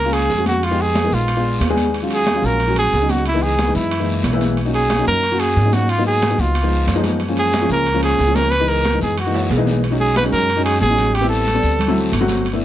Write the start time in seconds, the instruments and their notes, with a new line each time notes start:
Already playing: upright bass C#2, trumpet A#4
0.04 grand piano G#3 A#3 C#4 F4
0.13 trumpet G#4, high conga, high timbale
0.29 upright bass F2, high conga, low timbale, short guiro
0.37 grand piano G#3 A#3 C#4 F#4
0.46 trumpet F#4, high conga, high timbale, short guiro
0.62 trumpet F4, high conga, high timbale, long guiro
0.71 grand piano G#3 B3 D#4 G4
0.79 trumpet G#4, high conga
0.95 high conga, high timbale, low timbale, short guiro
1.04 grand piano G#3 B3 D#4 A#4
1.11 upright bass A#1, trumpet F4, high conga, short guiro
1.28 high conga, high timbale, long guiro
1.36 grand piano G#3 B3 D4 F4
1.44 high conga
1.60 upright bass D#2, high conga, high timbale, low timbale, short guiro
1.69 grand piano G#3 B3 D4 G#4
1.77 high conga, high timbale, short guiro
1.94 high conga, high timbale, long guiro
2.02 grand piano F#3 G#3 C#4 F4
2.10 trumpet G#4, high conga, high timbale
2.26 high conga, high timbale, low timbale, short guiro
2.34 grand piano F#3 G#3 C#4 F4
2.42 upright bass A#1, trumpet A#4, short guiro
2.60 high conga, high timbale, long guiro
2.67 grand piano F#3 G#3 C#4 F#4
2.76 trumpet G#4, high conga, high timbale
2.92 upright bass C#2, high conga, low timbale, short guiro
3.02 grand piano F#3 G#3 C#4 D#4
3.09 trumpet F#4, high conga, high timbale, short guiro
3.26 trumpet E4, high conga, high timbale, long guiro
3.34 grand piano E3 G#3 B3 D#4
3.43 trumpet G#4, high conga
3.59 high conga, high timbale, low timbale, short guiro
3.67 grand piano E3 G#3 B3 D#4
3.75 upright bass F#2, trumpet E4, high conga, short guiro
3.91 high conga, high timbale, long guiro
3.99 grand piano E3 G#3 A#3 D#4
4.08 high conga
4.24 upright bass B1, high conga, high timbale, low timbale, short guiro
4.33 grand piano E3 G#3 A#3 E4
4.41 high conga, high timbale, short guiro
4.57 high conga, high timbale, long guiro
4.65 grand piano F#3 A#3 C#4 D#4
4.73 trumpet G#4, high conga, high timbale
4.90 high conga, high timbale, low timbale, short guiro
4.98 grand piano F#3 A#3 C#4 D#4
5.07 upright bass F#2, trumpet A#4, short guiro
5.22 high conga, high timbale, long guiro
5.31 grand piano F#3 A#3 C#4 F#4
5.40 trumpet G#4, high conga, high timbale
5.56 upright bass G#2, high conga, low timbale, short guiro
5.64 grand piano F#3 A#3 C#4 D#4
5.72 trumpet F#4, high conga, high timbale, short guiro
5.88 trumpet F4, high conga, high timbale, long guiro
5.98 grand piano F#3 A#3 B3 D#4
6.05 trumpet G#4, high conga
6.22 high conga, high timbale, low timbale, short guiro
6.30 grand piano F#3 A#3 B3 D#4
6.38 upright bass C#2, trumpet F4, high conga, short guiro
6.55 high conga, high timbale, long guiro
6.62 grand piano F3 G#3 B3 D#4
6.71 high conga
6.87 upright bass F#2, high conga, high timbale, low timbale, short guiro
6.95 grand piano F3 G#3 B3 D#4
7.04 high conga, high timbale, short guiro
7.20 high conga, high timbale, long guiro
7.28 grand piano F3 G#3 A#3 C#4
7.37 trumpet G#4, high conga, high timbale
7.53 high conga, high timbale, low timbale, short guiro
7.61 grand piano F3 G#3 A#3 C#4
7.69 upright bass C#2, trumpet A#4, short guiro
7.85 high conga, high timbale, long guiro
7.94 grand piano F3 G#3 A#3 C#4
8.03 trumpet G#4, high conga, high timbale
8.19 upright bass C#2, high conga, low timbale, short guiro
8.27 grand piano F3 G#3 A#3 C#4
8.35 trumpet A#4, high conga, high timbale, short guiro
8.51 trumpet B4, high conga, high timbale, long guiro
8.60 grand piano E3 G#3 B3 D#4
8.68 trumpet A#4, high conga
8.84 high conga, high timbale, low timbale, short guiro
8.94 grand piano E3 G#3 B3 D#4
9.01 upright bass F#2, trumpet G#4, high conga, short guiro
9.18 trumpet F#4, high conga, high timbale, long guiro
9.26 grand piano E3 G#3 A#3 D#4
9.34 high conga, high timbale
9.50 upright bass B1, high conga, low timbale, short guiro
9.57 grand piano E3 G#3 A#3 D#4
9.67 high conga, low timbale, short guiro
9.84 high conga, high timbale, long guiro
9.90 grand piano F#3 G#3 C#4 D#4
10.00 trumpet G#4, high conga
10.16 trumpet B4, high conga, high timbale, short guiro
10.23 grand piano F#3 G#3 C#4 D#4
10.32 upright bass F#2, trumpet A#4, high conga, short guiro
10.49 high conga, high timbale, long guiro
10.56 grand piano F#3 G#3 C#4 D#4
10.65 trumpet G#4, high conga, high timbale
10.80 upright bass A1, trumpet G#4, high conga, short guiro
10.89 grand piano F#3 G#3 C#4 D#4
10.98 high conga, high timbale, short guiro
11.14 trumpet G4, high conga, high timbale, long guiro
11.20 grand piano G3 B3 C4 E4
11.30 trumpet A4, high conga
11.47 high conga, high timbale, short guiro
11.54 grand piano G3 B3 C4 D4
11.62 upright bass D2, short guiro
11.79 high conga, low conga, high timbale, long guiro
11.88 grand piano F#3 A3 C4 E4
11.96 high conga
12.12 upright bass G1, high conga, high timbale, short guiro
12.20 grand piano F#3 A3 C4 F#4
12.28 high conga, high timbale, short guiro
12.45 high conga, high timbale, long guiro
12.53 grand piano A3 B3 D4 E4
12.61 high conga